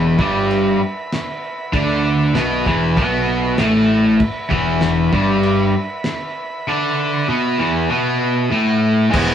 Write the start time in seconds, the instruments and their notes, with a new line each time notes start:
Already playing: picked electric bass E1, overdriven electric guitar E2 E3, transistor combo organ B4 E5 B5
0.18 picked electric bass G1, overdriven electric guitar G2 G3, kick
0.51 crash
1.12 snare, crash
1.73 picked electric bass D2, overdriven electric guitar D3 D4, kick, crash
2.34 picked electric bass B1, overdriven electric guitar B2 B3, snare, crash
2.66 picked electric bass E1, overdriven electric guitar E2 E3, kick
2.97 picked electric bass B1, overdriven electric guitar B2 B3, kick, crash
3.29 transistor combo organ B5
3.57 picked electric bass A1, overdriven electric guitar A2 A3, transistor combo organ G#5, snare, crash
3.86 transistor combo organ E5
4.16 transistor combo organ B4 E5 B5, kick, crash
4.49 picked electric bass E1, overdriven electric guitar E2 E3, kick
4.81 snare, crash
5.12 picked electric bass G1, overdriven electric guitar G2 G3, kick
5.43 crash
6.04 snare, crash
6.67 overdriven electric guitar D3 D4
7.28 overdriven electric guitar B2 B3
7.58 overdriven electric guitar E2 E3
7.90 overdriven electric guitar B2 B3
8.20 transistor combo organ B5
8.35 transistor combo organ A5
8.51 overdriven electric guitar A2 A3, transistor combo organ G#5
8.67 transistor combo organ F#5
8.84 transistor combo organ E5
9.10 picked electric bass E1, overdriven electric guitar E3 G#3 B3, transistor combo organ B4, kick, crash
9.15 overdriven electric guitar E4, transistor combo organ E5 G#5